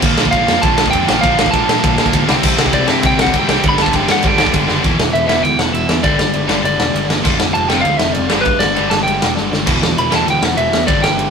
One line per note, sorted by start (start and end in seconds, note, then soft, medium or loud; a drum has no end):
0.02 0.12 A#1 loud
0.02 0.18 A#2 medium
0.02 1.06 A#2 medium
0.02 0.17 D3 medium
0.02 0.17 F3 loud
0.02 1.07 F3 loud
0.02 0.17 A#3 medium
0.02 1.06 A#3 loud
0.02 0.17 D4 medium
0.02 kick loud
0.02 crash medium
0.02 ride medium
0.17 0.27 A#1 medium
0.17 0.31 A#2 medium
0.17 0.31 D3 medium
0.17 0.31 F3 medium
0.17 0.32 A#3 loud
0.17 0.33 D4 loud
0.17 snare loud
0.25 kick medium
0.31 0.42 A#1 medium
0.31 0.48 A#2 medium
0.31 0.48 D3 medium
0.31 0.48 F3 medium
0.31 0.47 A#3 medium
0.31 0.46 D4 loud
0.31 0.63 F5 medium
0.31 kick medium
0.31 ride medium
0.47 0.56 F2 medium
0.47 0.61 A#2 medium
0.47 0.62 D3 medium
0.47 0.63 F3 medium
0.47 0.64 A#3 medium
0.47 0.64 D4 medium
0.47 snare loud
0.62 0.72 A#1 loud
0.62 0.77 A#2 loud
0.62 0.77 D3 medium
0.62 0.77 F3 loud
0.62 0.76 A#3 loud
0.62 0.75 D4 loud
0.62 0.90 A5 loud
0.62 kick loud
0.62 ride medium
0.76 0.88 A#1 medium
0.76 0.91 A#2 medium
0.76 0.92 D3 medium
0.76 0.92 F3 medium
0.76 0.93 A#3 medium
0.76 0.93 D4 medium
0.76 snare loud
0.86 kick medium
0.91 1.02 F2 loud
0.91 1.09 A#2 medium
0.91 1.08 D3 medium
0.91 1.08 F3 medium
0.91 1.07 A#3 medium
0.91 1.07 D4 medium
0.91 1.22 G5 medium
0.91 kick loud
0.91 ride medium
1.07 1.18 A#1 loud
1.07 1.21 A#2 medium
1.07 1.22 D3 medium
1.07 1.22 F3 medium
1.07 1.21 A#3 medium
1.07 1.22 A#3 medium
1.07 1.23 D4 medium
1.07 snare loud
1.21 1.32 A#1 loud
1.21 2.26 A#2 loud
1.21 1.39 A#2 medium
1.21 1.38 D3 medium
1.21 2.27 F3 loud
1.21 1.38 F3 medium
1.21 1.37 A#3 medium
1.21 1.37 D4 loud
1.21 1.50 F5 medium
1.21 kick loud
1.21 ride medium
1.25 2.28 A#3 loud
1.38 1.47 A#1 medium
1.38 1.50 A#2 medium
1.38 1.52 D3 medium
1.38 1.52 F3 medium
1.38 1.52 A#3 loud
1.38 1.53 D4 medium
1.38 snare loud
1.46 kick medium
1.51 1.63 A#1 loud
1.51 1.68 A#2 medium
1.51 1.68 D3 loud
1.51 1.68 F3 medium
1.51 1.67 A#3 medium
1.51 1.66 D4 medium
1.51 2.23 A5 medium
1.51 kick medium
1.51 ride medium
1.67 1.77 A#2 medium
1.67 1.81 A#2 medium
1.67 1.81 D3 medium
1.67 1.82 F3 medium
1.67 1.83 A#3 medium
1.67 1.83 D4 medium
1.67 snare loud
1.82 1.93 A#1 loud
1.82 1.98 A#2 loud
1.82 1.98 D3 loud
1.82 1.97 F3 loud
1.82 1.96 A#3 loud
1.82 1.96 D4 loud
1.82 kick loud
1.82 ride medium
1.97 2.07 A#1 medium
1.97 2.11 A#2 medium
1.97 2.12 D3 medium
1.97 2.13 F3 medium
1.97 2.13 A#3 medium
1.97 2.14 D4 medium
1.97 snare loud
2.06 kick medium
2.12 2.23 D2 loud
2.12 2.27 A#2 medium
2.12 2.27 D3 medium
2.12 2.27 F3 medium
2.12 2.27 A#3 medium
2.12 2.28 D4 medium
2.12 kick loud
2.12 ride medium
2.26 2.37 C2 loud
2.26 3.31 C3 loud
2.26 2.42 C3 loud
2.26 3.33 G3 loud
2.26 2.42 G3 loud
2.26 2.41 C4 medium
2.26 3.33 C4 loud
2.26 2.40 E4 loud
2.26 snare loud
2.41 2.52 C2 loud
2.41 2.57 C3 medium
2.41 2.59 G3 loud
2.41 2.58 C4 loud
2.41 2.58 E4 loud
2.41 kick loud
2.41 crash loud
2.57 2.67 C2 medium
2.57 2.74 C3 medium
2.57 2.74 G3 medium
2.57 2.73 C4 loud
2.57 2.72 E4 loud
2.57 snare loud
2.66 kick medium
2.73 2.83 C2 medium
2.73 2.87 C3 medium
2.73 2.88 G3 medium
2.73 2.87 C4 medium
2.73 2.88 E4 loud
2.73 2.90 D5 medium
2.73 kick loud
2.73 ride medium
2.88 2.97 G2 medium
2.88 3.05 C3 medium
2.88 3.05 G3 medium
2.88 3.04 C4 medium
2.88 3.03 E4 medium
2.88 3.04 E5 medium
2.88 snare loud
3.03 3.13 C2 loud
3.03 3.18 C3 medium
3.03 3.20 G3 medium
3.03 3.20 C4 loud
3.03 3.20 E4 loud
3.03 3.20 G5 loud
3.03 kick loud
3.03 ride medium
3.18 3.28 C2 medium
3.18 3.34 C3 medium
3.18 3.34 G3 medium
3.18 3.33 C4 medium
3.18 3.32 E4 medium
3.18 3.35 F#5 loud
3.18 snare loud
3.27 kick loud
3.32 3.43 G2 medium
3.32 3.47 C3 medium
3.32 3.66 G3 medium
3.32 3.48 G3 medium
3.32 3.48 C4 medium
3.32 3.48 E4 medium
3.32 kick loud
3.32 ride medium
3.39 3.67 G5 medium
3.48 3.58 C2 medium
3.48 3.62 C3 medium
3.48 3.64 G3 medium
3.48 3.63 C4 medium
3.48 3.63 E4 medium
3.48 snare loud
3.63 3.73 G1 loud
3.63 3.80 G2 medium
3.63 4.68 G2 loud
3.63 3.79 D3 loud
3.63 4.68 D3 medium
3.63 3.78 G3 loud
3.63 4.66 G3 loud
3.63 3.78 B3 medium
3.63 3.77 D4 loud
3.63 kick loud
3.63 ride medium
3.69 3.81 B5 loud
3.78 3.89 G1 medium
3.78 3.92 G2 medium
3.78 3.93 D3 medium
3.78 3.94 G3 medium
3.78 3.94 B3 loud
3.78 3.94 D4 loud
3.78 3.96 A5 loud
3.78 snare loud
3.86 kick medium
3.93 4.03 G1 medium
3.93 4.10 G2 medium
3.93 4.09 D3 medium
3.93 4.09 G3 medium
3.93 4.08 B3 medium
3.93 4.08 D4 medium
3.93 4.10 G5 medium
3.93 kick loud
3.93 ride medium
4.08 4.17 G2 medium
4.08 4.23 G2 medium
4.08 4.24 D3 medium
4.08 4.24 G3 medium
4.08 4.25 B3 medium
4.08 4.25 D4 medium
4.08 snare loud
4.12 4.27 F#5 loud
4.23 4.34 G1 loud
4.23 4.40 G2 medium
4.23 4.39 D3 loud
4.23 4.39 G3 loud
4.23 4.38 B3 loud
4.23 4.37 D4 loud
4.23 kick loud
4.23 ride medium
4.27 4.70 G5 medium
4.37 4.47 G1 medium
4.37 4.52 G2 medium
4.37 4.52 D3 medium
4.37 4.53 G3 medium
4.37 4.54 B3 medium
4.37 4.54 D4 loud
4.37 snare loud
4.46 kick medium
4.53 4.63 G1 loud
4.53 4.69 G2 medium
4.53 4.68 D3 medium
4.53 4.68 G3 medium
4.53 4.68 B3 medium
4.53 4.66 D4 medium
4.53 kick loud
4.53 ride medium
4.67 4.77 F#1 medium
4.67 4.83 G2 medium
4.67 4.84 G2 medium
4.67 4.83 D3 medium
4.67 4.82 G3 medium
4.67 4.83 G3 medium
4.67 4.83 B3 medium
4.67 4.82 D4 medium
4.67 snare medium
4.84 4.96 E1 loud
4.84 5.00 E2 medium
4.84 4.99 B2 medium
4.84 4.96 E3 loud
4.84 4.99 E3 loud
4.84 4.96 B3 medium
4.84 4.97 E4 medium
4.84 4.97 G4 medium
4.84 kick loud
4.84 ride medium
4.98 5.10 E1 medium
4.98 5.13 E2 medium
4.98 5.14 B2 medium
4.98 5.14 E3 medium
4.98 snare loud
5.13 5.25 E1 medium
5.13 5.29 E2 medium
5.13 5.29 B2 medium
5.13 5.29 E3 medium
5.13 5.27 E5 medium
5.13 ride medium
5.28 5.40 E1 medium
5.28 5.43 E2 medium
5.28 5.44 B2 medium
5.28 5.41 E3 medium
5.28 5.44 E3 medium
5.28 5.41 B3 medium
5.28 5.41 E4 medium
5.28 5.41 G4 medium
5.28 5.43 E5 loud
5.28 snare loud
5.43 5.55 D2 loud
5.43 5.60 E2 medium
5.43 5.59 B2 medium
5.43 5.59 E3 loud
5.43 5.59 G5 medium
5.43 ride medium
5.57 5.69 E1 medium
5.57 5.72 E2 medium
5.57 5.72 B2 medium
5.57 5.72 E3 loud
5.57 5.73 F#5 loud
5.57 snare loud
5.73 5.85 E1 medium
5.73 5.89 E2 medium
5.73 5.88 B2 medium
5.73 5.87 E3 medium
5.73 6.04 E5 medium
5.73 ride medium
5.88 6.00 E2 medium
5.88 6.01 E2 medium
5.88 6.03 B2 medium
5.88 6.03 E3 loud
5.88 snare loud
6.02 6.16 G1 loud
6.02 6.19 G2 medium
6.02 6.19 D3 loud
6.02 6.16 G3 medium
6.02 6.18 G3 loud
6.02 6.16 B3 medium
6.02 6.16 D4 medium
6.02 6.17 G4 medium
6.02 6.64 D5 medium
6.02 kick loud
6.02 ride medium
6.19 6.31 G1 medium
6.19 6.32 G2 medium
6.19 6.33 D3 medium
6.19 6.33 G3 medium
6.19 snare loud
6.33 6.46 G1 medium
6.33 6.50 G2 medium
6.33 6.49 D3 medium
6.33 6.48 G3 loud
6.33 ride medium
6.48 6.60 G1 medium
6.48 6.64 G2 medium
6.48 6.64 D3 medium
6.48 6.61 G3 medium
6.48 6.65 G3 medium
6.48 6.61 B3 medium
6.48 6.62 D4 medium
6.48 6.62 G4 medium
6.48 snare loud
6.64 6.76 G1 loud
6.64 6.79 G2 medium
6.64 6.78 D3 medium
6.64 6.77 G3 medium
6.64 7.07 D5 medium
6.64 ride medium
6.78 6.90 E1 medium
6.78 6.93 G2 medium
6.78 6.93 D3 loud
6.78 6.94 G3 loud
6.78 snare loud
6.93 7.05 G1 medium
6.93 7.09 G2 medium
6.93 7.08 D3 loud
6.93 7.08 G3 loud
6.93 ride medium
7.09 7.21 G1 loud
7.09 7.22 G2 medium
7.09 7.23 D3 medium
7.09 7.23 G3 medium
7.09 snare loud
7.23 7.36 F1 loud
7.23 7.38 F2 medium
7.23 7.38 C3 loud
7.23 7.37 F3 loud
7.23 7.36 F3 medium
7.23 7.37 C4 medium
7.23 7.37 F4 medium
7.23 7.37 A4 medium
7.23 kick loud
7.23 crash medium
7.39 7.51 F1 medium
7.39 7.52 F2 medium
7.39 7.52 C3 medium
7.39 7.54 F3 medium
7.39 snare loud
7.53 7.66 F1 medium
7.53 7.70 F2 medium
7.53 7.70 C3 medium
7.53 7.69 F3 medium
7.53 7.69 A5 loud
7.53 ride medium
7.69 7.81 F1 medium
7.69 7.84 F2 medium
7.69 7.84 C3 medium
7.69 7.81 F3 medium
7.69 7.84 F3 medium
7.69 7.82 C4 medium
7.69 7.82 F4 loud
7.69 7.82 A4 medium
7.69 7.85 G5 loud
7.69 snare loud
7.81 7.96 D2 medium
7.81 8.01 F2 medium
7.81 8.00 C3 medium
7.81 7.97 F5 medium
7.81 ride medium
7.86 8.00 F3 loud
7.97 8.12 F1 medium
7.97 8.13 E5 loud
7.97 snare loud
8.01 8.14 F2 medium
8.01 8.15 C3 loud
8.01 8.15 F3 loud
8.13 8.27 F1 medium
8.13 8.29 F2 loud
8.13 8.30 C3 medium
8.13 8.30 F3 loud
8.13 8.45 D5 medium
8.13 ride medium
8.30 8.43 G1 loud
8.30 8.45 G2 loud
8.30 8.44 D3 medium
8.30 8.45 G3 medium
8.30 8.43 G3 medium
8.30 8.43 B3 medium
8.30 8.43 D4 loud
8.30 8.43 G4 loud
8.30 snare loud
8.41 8.59 B4 medium
8.45 8.57 G1 loud
8.45 8.58 G2 medium
8.45 8.60 D3 loud
8.45 8.61 G3 loud
8.45 kick loud
8.45 ride medium
8.59 8.73 G1 medium
8.59 8.76 G2 medium
8.59 8.75 D3 medium
8.59 8.76 G3 medium
8.59 8.91 D5 medium
8.59 snare loud
8.76 8.89 G1 medium
8.76 8.89 G2 medium
8.76 8.90 D3 medium
8.76 8.91 G3 medium
8.76 8.88 G3 loud
8.76 8.88 B3 medium
8.76 8.89 D4 loud
8.76 8.89 G4 loud
8.76 ride medium
8.90 9.04 G1 medium
8.90 9.05 G2 medium
8.90 9.05 D3 medium
8.90 9.04 G3 medium
8.90 9.03 A5 loud
8.90 snare loud
9.03 9.18 G1 medium
9.03 9.20 G2 medium
9.03 9.20 D3 medium
9.03 9.22 G3 loud
9.03 9.32 G5 medium
9.08 ride medium
9.21 9.33 E1 medium
9.21 9.36 G2 medium
9.21 9.36 D3 medium
9.21 9.35 G3 medium
9.21 snare loud
9.36 9.49 G1 medium
9.36 9.50 G2 medium
9.36 9.51 D3 medium
9.36 9.51 G3 loud
9.36 snare medium
9.51 9.64 G1 medium
9.51 9.65 G2 medium
9.51 9.66 D3 medium
9.51 9.67 G3 medium
9.51 snare medium
9.66 9.79 E1 loud
9.66 9.81 E2 loud
9.66 9.81 B2 loud
9.66 9.78 E3 medium
9.66 9.80 E3 loud
9.66 9.79 B3 loud
9.66 9.79 E4 medium
9.66 9.79 G4 medium
9.66 kick loud
9.66 crash medium
9.66 ride medium
9.81 9.94 E1 medium
9.81 9.96 E2 medium
9.81 9.96 B2 medium
9.81 9.97 E3 medium
9.81 snare loud
9.97 10.09 E1 medium
9.97 10.11 E2 medium
9.97 10.11 B2 medium
9.97 10.10 E3 loud
9.97 10.13 B5 medium
9.97 ride medium
10.10 10.23 E1 medium
10.10 10.25 E2 medium
10.10 10.25 B2 medium
10.10 10.23 E3 medium
10.10 10.26 E3 medium
10.10 10.24 B3 medium
10.10 10.24 E4 loud
10.10 10.24 G4 medium
10.10 snare loud
10.16 10.28 A5 medium
10.26 10.38 D2 loud
10.26 10.41 E2 medium
10.26 10.41 B2 medium
10.26 10.41 E3 loud
10.26 ride medium
10.30 10.44 G5 medium
10.42 10.54 E1 medium
10.42 10.54 E2 medium
10.42 10.55 B2 loud
10.42 10.56 E3 loud
10.42 10.59 F#5 loud
10.42 snare loud
10.56 10.69 E1 loud
10.56 10.70 E2 medium
10.56 10.70 B2 medium
10.56 10.69 E3 medium
10.56 10.85 E5 medium
10.56 ride medium
10.70 10.86 E2 medium
10.70 10.84 E2 medium
10.70 10.86 B2 medium
10.70 10.86 E3 medium
10.70 snare loud
10.86 11.00 G1 loud
10.86 11.02 G2 loud
10.86 11.01 D3 medium
10.86 10.99 G3 medium
10.86 11.01 G3 loud
10.86 11.00 B3 medium
10.86 11.00 D4 medium
10.86 11.00 G4 medium
10.86 11.03 D5 medium
10.86 kick loud
10.86 ride medium
11.02 11.15 G1 medium
11.02 11.15 G2 medium
11.02 11.16 D3 medium
11.02 11.16 G3 medium
11.02 11.30 G5 medium
11.02 snare loud
11.16 11.30 G1 medium
11.16 11.30 G2 loud
11.16 11.30 D3 medium
11.16 11.30 G3 loud
11.16 ride medium